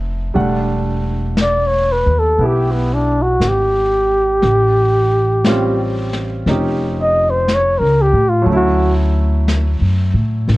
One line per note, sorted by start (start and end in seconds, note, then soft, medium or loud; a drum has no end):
0.00 0.31 F1 medium
0.00 0.33 A3 soft
0.00 0.35 B3 soft
0.00 0.35 C4 soft
0.00 0.36 D#4 soft
0.34 2.03 E1 medium
0.34 4.42 G3 soft
0.34 4.43 A3 soft
0.34 4.43 D4 soft
0.34 4.43 F#5 soft
0.34 brush sweep soft
1.37 brush sweep soft
1.37 snare soft
1.37 hi-hat pedal soft
1.42 1.69 D5 medium
1.67 1.94 C#5 medium
1.92 2.21 B4 medium
2.06 2.37 D#2 medium
2.19 2.47 A4 medium
2.39 3.37 B1 medium
2.39 4.43 B3 soft
2.39 4.44 E4 soft
2.39 brush sweep soft
2.43 4.45 G4 soft
2.43 2.73 G4 medium
2.72 2.95 B3 soft
2.94 3.24 D4 medium
3.22 3.50 F#4 medium
3.40 4.38 G#1 medium
3.40 brush sweep soft
3.40 snare soft
3.40 hi-hat pedal soft
3.48 6.49 G4 medium
4.42 6.42 A1 medium
4.42 brush sweep soft
4.42 snare soft
5.45 8.48 G3 soft
5.45 8.48 C4 soft
5.45 6.45 C#4 soft
5.45 8.49 F4 soft
5.45 brush sweep soft
5.45 snare soft
5.45 hi-hat pedal soft
6.13 snare soft
6.46 7.76 F1 medium
6.46 8.48 C#4 soft
6.46 8.49 D#4 soft
6.46 brush sweep soft
6.46 snare soft
6.50 8.49 G4 soft
7.02 7.31 D#5 medium
7.30 7.55 C5 medium
7.48 brush sweep soft
7.48 snare soft
7.48 hi-hat pedal soft
7.54 7.80 C#5 medium
7.78 8.11 C#2 soft
7.78 8.03 A#4 medium
8.02 8.31 G4 medium
8.13 8.45 A2 medium
8.29 8.46 F4 medium
8.42 10.57 F#3 soft
8.42 10.57 A3 soft
8.46 9.77 D2 medium
8.46 10.57 C#4 soft
8.46 brush sweep soft
8.53 10.57 E4 soft
8.53 8.93 F#4 medium
9.48 brush sweep soft
9.48 snare soft
9.48 hi-hat pedal soft
9.81 10.13 F#2 soft
10.14 10.45 A2 medium
10.48 10.57 A1 medium
10.48 brush sweep soft
10.48 snare soft